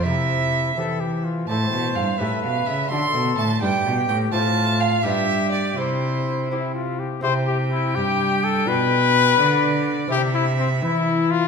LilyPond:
<<
  \new Staff \with { instrumentName = "Violin" } { \time 6/8 \key c \mixolydian \tempo 4. = 84 e''2~ e''8 r8 | \key c \major a''4 f''8 e''8 f''8 e''8 | c'''4 a''8 g''4 g''8 | a''4 f''8 e''4 d''8 |
c''4. r4. | g''2.~ | g''4. d''4. | e''2. | }
  \new Staff \with { instrumentName = "Trumpet" } { \time 6/8 \key c \mixolydian e'4. a'8 g'8 f'8 | \key c \major c''4. b'4. | a'4. g'4. | f'4. g'4. |
e'4. e'8 f'8 g'8 | c''8 g'8 e'8 g'4 a'8 | b'2~ b'8. r16 | g'8 e'8 c'8 e'4 f'8 | }
  \new Staff \with { instrumentName = "Lute" } { \time 6/8 \key c \mixolydian r4. <c' g'>4. | \key c \major <c' e' a'>4. <cis' g' a'>4. | <d' fis' a'>4. <d' g' b'>4. | <c' f' c''>4. <d' f' b'>4. |
r4. <c' e' g'>4. | <c' e' g'>2. | <d' f'>2. | <c' e'>2. | }
  \new Staff \with { instrumentName = "Lute" } { \clef bass \time 6/8 \key c \mixolydian c4. e4. | \key c \major a,8 b,8 g,8 a,8 b,8 cis8 | d8 b,8 a,8 g,8 b,8 a,8 | a,4. g,4. |
c2~ c8 r8 | c4. g,4. | b,4. d4. | c4. e4. | }
  \new Staff \with { instrumentName = "Cello" } { \clef bass \time 6/8 \key c \mixolydian c4. e4. | \key c \major a,8 b,8 g,8 a,8 b,8 cis8 | d8 b,8 a,8 g,8 b,8 a,8 | a,4. g,4. |
c2~ c8 r8 | c4. g,4. | b,4. d4. | c4. e4. | }
>>